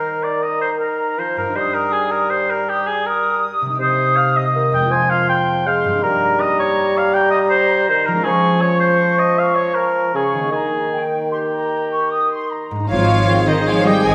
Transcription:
Already playing: bassoon D#3, harp D#3 G3 D#4 A#4, oboe A#4, flute section A#5
0.23 oboe D5
0.43 oboe D#5, flute section A#5
0.61 oboe C5
0.79 oboe A#4, flute section A#5
1.19 bassoon F3, oboe C5
1.37 harp G2, oboe A#4
1.42 harp G3
1.46 harp D#4
1.50 harp G4
1.55 bassoon G3, oboe C5, flute section D#6
1.74 oboe A#4
1.92 oboe G#4
2.12 oboe A#4
2.30 oboe C5
2.50 oboe A#4
2.68 oboe G4, flute section D#6
2.87 oboe G#4
3.06 oboe A#4, flute section D#6
3.61 harp C3
3.66 harp G3
3.70 harp D#4
3.75 harp G4
3.79 bassoon C3, oboe C5, flute section D#6
4.17 oboe F5
4.37 oboe D#5
4.56 bassoon D#3
4.72 harp F2, oboe G5
4.77 harp G#3
4.81 harp C4
4.86 harp F4
4.91 bassoon F3, oboe G#5, flute section C6
5.10 oboe F5
5.29 oboe G5
5.65 bassoon G#3, oboe F5, flute section C6
5.84 harp G2
5.89 harp G3
5.93 harp A#3
5.98 harp D#4
6.03 bassoon G3, oboe A#4, flute section A#5
6.39 oboe D#5, flute section A#5
6.59 oboe C#5
6.98 oboe F5
7.14 oboe G5, flute section A#5
7.31 oboe D#5
7.50 oboe C5
7.89 bassoon D#3, oboe C5
8.06 harp F3, oboe A#4
8.12 harp G#3
8.17 harp C#4
8.21 harp F4, oboe G#4
8.26 bassoon F3, flute section C#6
8.61 oboe C#5, flute section C#6
8.80 oboe C5
9.19 oboe D#5
9.38 oboe F5, flute section C#6
9.55 oboe C#5
9.75 oboe A#4
10.14 bassoon C#3, oboe G#4, flute section C#6
10.34 harp D#3
10.38 harp A#3
10.43 harp D#4
10.47 bassoon D#3, harp A#4
10.52 oboe G#4, flute section A#5
10.90 flute section G5
11.31 oboe G4, flute section C6
11.52 flute section A#5
11.90 flute section C#6
12.10 flute section D#6
12.30 flute section C6
12.51 flute section A#5
12.71 harp G#2
12.76 harp G#3
12.80 harp D#4
12.85 harp C5, flute section C#5
12.89 double bass section G#1, trombone section D#3 G#3, cello section F3, french horn section C4 D#4, trumpet F4, oboe C#5, violin section F5
13.28 violin section C4, viola section G#4
13.47 cello section D#3, trumpet D#4, flute section C5, oboe C5, violin section D#5
13.66 cello section F3, violin section C4 F5, trumpet F4, flute section C#5, oboe C#5
13.86 cello section G3, trumpet G4, flute section D#5, oboe D#5, violin section G5
14.04 double bass section G#1, cello section G#3, trumpet G#4, oboe D#5, flute section D#5, violin section G#5

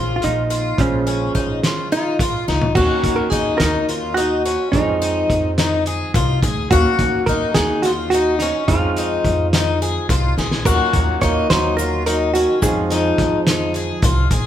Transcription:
Already playing: upright bass A#1, grand piano C#3 F3 G#3 C4, hollow-body jazz guitar F4, twelve-string acoustic guitar F4
0.16 hollow-body jazz guitar F4
0.22 upright bass A#1, hollow-body jazz guitar D#4, closed hi-hat
0.50 twelve-string acoustic guitar F4, closed hi-hat
0.77 upright bass A#1, grand piano C#3 F3 G#3 C5, hollow-body jazz guitar C#4, kick, closed hi-hat
1.07 twelve-string acoustic guitar C#4, closed hi-hat
1.35 upright bass A#1, twelve-string acoustic guitar D#4, kick, closed hi-hat
1.63 twelve-string acoustic guitar F4, snare, closed hi-hat
1.92 twelve-string acoustic guitar D#4, hollow-body jazz guitar F4, closed hi-hat
2.19 upright bass A#1, twelve-string acoustic guitar F4, kick, closed hi-hat
2.48 upright bass C#2, twelve-string acoustic guitar D#4, snare
2.62 floor tom
2.75 upright bass D#2, grand piano D#3 F#3 A#3 C#4, hollow-body jazz guitar F#4, twelve-string acoustic guitar F#4, kick, crash
3.04 upright bass D#2, kick, closed hi-hat
3.16 hollow-body jazz guitar A#4
3.30 upright bass D#2, twelve-string acoustic guitar D#4, hollow-body jazz guitar G#4, kick, closed hi-hat
3.58 upright bass D#2, twelve-string acoustic guitar D#4, hollow-body jazz guitar A#4, snare, closed hi-hat
3.89 twelve-string acoustic guitar F4, closed hi-hat
4.14 twelve-string acoustic guitar D#4, hollow-body jazz guitar F#4, closed hi-hat
4.45 twelve-string acoustic guitar C#4, closed hi-hat
4.72 upright bass F2, grand piano F3 G#3 C4 D#4, hollow-body jazz guitar D#4, kick, closed hi-hat
5.02 twelve-string acoustic guitar D#4, closed hi-hat
5.30 upright bass F2, kick, closed hi-hat
5.58 twelve-string acoustic guitar D#4, snare, closed hi-hat
5.86 twelve-string acoustic guitar G#4, closed hi-hat
6.14 upright bass C2, twelve-string acoustic guitar F4, kick, closed hi-hat
6.43 upright bass D2, twelve-string acoustic guitar G#4, kick, closed hi-hat
6.70 upright bass D#2, grand piano F#3 A#3 C#4 F5, hollow-body jazz guitar F#4, twelve-string acoustic guitar F#4, kick, closed hi-hat
6.99 upright bass D#2, kick, closed hi-hat
7.26 upright bass D#2, twelve-string acoustic guitar D#4, hollow-body jazz guitar A#4, kick, closed hi-hat
7.54 upright bass D#2, twelve-string acoustic guitar D#4, hollow-body jazz guitar G#4, snare, closed hi-hat
7.82 twelve-string acoustic guitar F4, hollow-body jazz guitar F#4, snare, closed hi-hat
8.10 hollow-body jazz guitar F#4, closed hi-hat
8.14 twelve-string acoustic guitar D#4
8.39 twelve-string acoustic guitar C#4, hollow-body jazz guitar D#4, snare, closed hi-hat
8.67 upright bass F2, grand piano G#3 C4 D#4 F4, hollow-body jazz guitar F4, kick, closed hi-hat
8.96 twelve-string acoustic guitar D#4, closed hi-hat
9.25 upright bass F2, kick, closed hi-hat
9.53 twelve-string acoustic guitar D#4, snare, closed hi-hat
9.82 twelve-string acoustic guitar G#4, closed hi-hat
10.09 upright bass C2, twelve-string acoustic guitar F4, kick, snare, closed hi-hat
10.37 upright bass A#1, twelve-string acoustic guitar G#4, snare
10.51 snare
10.65 upright bass D#2, grand piano F#3 A#3 C#4 F4, trombone F#3, twelve-string acoustic guitar F#4, hollow-body jazz guitar A#4, kick, closed hi-hat, crash, shaker
10.93 upright bass D#2, kick, closed hi-hat
11.21 upright bass D#2, trombone A#3, twelve-string acoustic guitar D#4, hollow-body jazz guitar C#5, kick, snare, closed hi-hat
11.50 upright bass D#2, trombone F#3, twelve-string acoustic guitar D#4, hollow-body jazz guitar C5, snare, closed hi-hat
11.77 trombone F#3, twelve-string acoustic guitar F4, hollow-body jazz guitar A#4, closed hi-hat, shaker
12.06 trombone F#3, twelve-string acoustic guitar D#4, hollow-body jazz guitar A#4, closed hi-hat
12.33 trombone D#3, twelve-string acoustic guitar C#4, hollow-body jazz guitar F#4, closed hi-hat
12.61 upright bass F2, trombone F3, grand piano G#3 C4 D#4 F4, hollow-body jazz guitar G#4, kick, closed hi-hat, shaker
12.90 twelve-string acoustic guitar D#4, snare, closed hi-hat
13.18 upright bass F2, kick, snare, closed hi-hat
13.47 twelve-string acoustic guitar D#4, snare, closed hi-hat
13.74 twelve-string acoustic guitar G#4, closed hi-hat
14.02 upright bass C2, twelve-string acoustic guitar F4, kick, closed hi-hat
14.31 upright bass A#1, twelve-string acoustic guitar G#4, kick, closed hi-hat

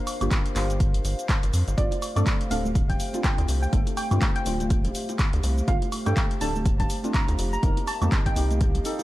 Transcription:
Already playing: analog synth pad D4 A#4 C5 F5
0.07 open hi-hat, high woodblock, shaker
0.21 analog synth bass G1, synth stab A#3 D4 F4 G4, closed hi-hat, high woodblock, shaker
0.31 kick, clap, closed hi-hat, shaker
0.46 closed hi-hat
0.55 analog synth bass G1, synth stab A#3 D4 F4 G4, clap, open hi-hat, shaker
0.70 closed hi-hat, shaker
0.80 kick, closed hi-hat, shaker
0.94 closed hi-hat
1.04 analog synth bass G1, open hi-hat, shaker
1.19 closed hi-hat, shaker
1.29 kick, clap, closed hi-hat, high woodblock, shaker
1.43 analog synth bass G1, closed hi-hat
1.53 analog synth bass F2, open hi-hat, shaker
1.68 analog synth bass G1, closed hi-hat, shaker
1.77 analog synth bass G1, synth stab A3 C4 D4 F4, analog synth pad A3 G4, synth pluck D5, kick, closed hi-hat, shaker
1.91 closed hi-hat, high bongo
2.02 open hi-hat, high woodblock, shaker
2.16 analog synth bass G2, synth stab A3 C4 D4 A4, synth pluck D5, closed hi-hat, high conga, high woodblock, shaker
2.27 kick, clap, closed hi-hat, shaker
2.41 closed hi-hat
2.50 analog synth bass D1, synth stab A3 C4 D4 A4, synth pluck F5, open hi-hat, shaker
2.65 high conga, shaker
2.75 kick, closed hi-hat, shaker
2.89 synth pluck G5, kick, closed hi-hat, low conga
3.00 open hi-hat, shaker
3.13 synth stab A3 C4 D4 F4, closed hi-hat, high bongo, shaker
3.24 synth pluck G5, kick, clap, closed hi-hat, high woodblock, shaker
3.38 analog synth bass D2, closed hi-hat, high bongo
3.48 analog synth bass C2, open hi-hat, shaker
3.62 synth pluck G5, shaker
3.72 analog synth bass G1, synth stab A3 C4 D4 A4, kick, closed hi-hat, shaker
3.87 closed hi-hat, high bongo
3.97 synth pluck G5, open hi-hat, high woodblock, shaker
4.11 analog synth bass G2, synth stab A3 C4 D4 F4, closed hi-hat, high conga, high woodblock, shaker
4.22 kick, clap, closed hi-hat, shaker
4.36 synth pluck G5, closed hi-hat
4.45 analog synth bass D1, synth stab A3 C4 D4 F4, open hi-hat, shaker
4.60 closed hi-hat, high conga, shaker
4.70 kick, closed hi-hat, shaker
4.84 closed hi-hat, low conga
4.95 open hi-hat, shaker
5.09 closed hi-hat, high bongo, shaker
5.19 kick, clap, closed hi-hat, high woodblock, shaker
5.33 analog synth bass D2, closed hi-hat
5.43 analog synth bass C2, open hi-hat, high bongo, shaker
5.58 shaker
5.67 analog synth bass G1, synth stab A3 C4 D4 F4, synth pluck F5, kick, closed hi-hat, shaker
5.82 closed hi-hat, high bongo
5.92 open hi-hat, high woodblock, shaker
6.06 analog synth bass G2, synth stab A3 C4 D4 A4, synth pluck G5, closed hi-hat, high conga, high woodblock, shaker
6.17 kick, clap, closed hi-hat, shaker
6.31 closed hi-hat
6.41 analog synth bass D1, synth stab A3 C4 D4 A4, synth pluck A5, open hi-hat, shaker
6.56 high conga, shaker
6.65 kick, closed hi-hat, shaker
6.80 synth pluck A5, kick, closed hi-hat, low conga
6.90 open hi-hat, shaker
7.03 synth stab A3 C4 D4 F4, closed hi-hat, high bongo, shaker
7.14 synth pluck A#5, kick, clap, closed hi-hat, high woodblock, shaker
7.28 analog synth bass D2, closed hi-hat, high bongo
7.38 analog synth bass F1, analog synth pad A#3 D#5 F5, open hi-hat, shaker
7.53 synth pluck A#5, shaker
7.63 analog synth bass F1, synth stab A#3 C4 D#4 A#4, kick, closed hi-hat, shaker
7.77 closed hi-hat, high bongo
7.87 synth pluck A5, open hi-hat, high woodblock, shaker
8.01 analog synth bass F2, synth stab A#3 C4 D#4 G4, closed hi-hat, high conga, high woodblock, shaker
8.12 kick, clap, closed hi-hat, shaker
8.26 synth pluck G5, kick, closed hi-hat
8.36 analog synth bass C2, synth stab A#3 C4 D#4 G4, open hi-hat, shaker
8.50 closed hi-hat, high conga, shaker
8.61 kick, closed hi-hat, shaker
8.75 closed hi-hat, low conga
8.84 synth stab A#3 C4 D#4 A4, open hi-hat, shaker
8.99 closed hi-hat, high bongo, shaker

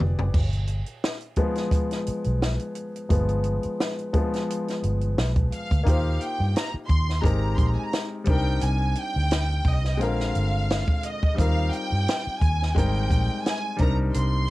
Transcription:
Already playing: grand piano B3 F4 G4 G#4 D5
0.00 fingered electric bass F1, mid tom
0.19 fingered electric bass F#1, floor tom
0.34 fingered electric bass G1, kick, crash
0.52 closed hi-hat
0.67 closed hi-hat
0.86 closed hi-hat
1.04 snare
1.20 closed hi-hat
1.36 grand piano F3 G#3 B3, kick, closed hi-hat
1.55 snare, closed hi-hat
1.71 kick, closed hi-hat
1.91 snare, closed hi-hat
2.07 muted fingered electric bass stroke, closed hi-hat
2.24 fingered electric bass B1, closed hi-hat
2.42 snare
2.59 closed hi-hat
2.75 closed hi-hat
2.96 closed hi-hat
3.09 fingered electric bass G1, grand piano F3 G#3 B3, kick, closed hi-hat
3.29 closed hi-hat
3.44 closed hi-hat
3.63 muted fingered electric bass stroke, closed hi-hat
3.80 snare
3.98 closed hi-hat
4.13 grand piano F3 G#3 B3, kick, closed hi-hat
4.33 snare, closed hi-hat
4.50 closed hi-hat
4.68 snare, closed hi-hat
4.83 fingered electric bass G1, closed hi-hat
5.01 closed hi-hat
5.18 fingered electric bass B1, snare
5.36 kick, closed hi-hat
5.52 violin section F5, closed hi-hat
5.71 fingered electric bass D2, kick, closed hi-hat
5.83 fingered electric bass D#2, grand piano A#3 D#4 F4, kick, closed hi-hat
5.88 grand piano G4 C5, violin section F5
6.21 violin section G5, closed hi-hat
6.40 fingered electric bass G2
6.56 violin section A#5, snare, closed hi-hat
6.74 muted fingered electric bass stroke
6.88 fingered electric bass D#2, violin section C6, kick, closed hi-hat
7.09 snare
7.22 fingered electric bass G#1, grand piano G#3 C4 D#4 G4 A#4, violin section A#5, kick, closed hi-hat
7.57 fingered electric bass A#1, violin section C6, kick, closed hi-hat
7.66 violin section A#5
7.76 violin section G#5
7.84 violin section A#5
7.93 snare, closed hi-hat
8.24 fingered electric bass C2, grand piano G3 C4 D4, kick, closed hi-hat
8.29 grand piano D#4 A#4, violin section G5
8.61 fingered electric bass C2, violin section G#5, closed hi-hat
8.95 violin section G5, closed hi-hat
9.16 fingered electric bass D2
9.31 snare, closed hi-hat
9.64 fingered electric bass C2, kick, open hi-hat
9.69 violin section D#5
9.85 snare
9.97 fingered electric bass A#1, grand piano D3 G#3 C4, violin section G5
10.01 grand piano F4 A#4, violin section F5, closed hi-hat
10.20 snare
10.35 fingered electric bass G1, closed hi-hat
10.70 snare, closed hi-hat
10.88 kick
11.03 violin section D#5, closed hi-hat
11.23 kick
11.35 grand piano G3 C4 D#4, kick
11.39 fingered electric bass D#2, grand piano F4 A#4, violin section F5, closed hi-hat
11.73 violin section G5, closed hi-hat
11.92 fingered electric bass G2
12.08 snare, closed hi-hat
12.27 muted fingered electric bass stroke
12.41 fingered electric bass D#2, violin section G#5, kick, closed hi-hat
12.62 snare
12.75 fingered electric bass G#1, grand piano G3 G#3 C4 D#4 A#4, violin section G5, kick, closed hi-hat
13.11 fingered electric bass A#1, kick, closed hi-hat
13.44 violin section G#5, snare, closed hi-hat
13.77 fingered electric bass C2, grand piano G3 C4 D4, kick, closed hi-hat
13.81 grand piano D#4 A#4, violin section A#5
14.14 fingered electric bass C2, violin section C6, closed hi-hat

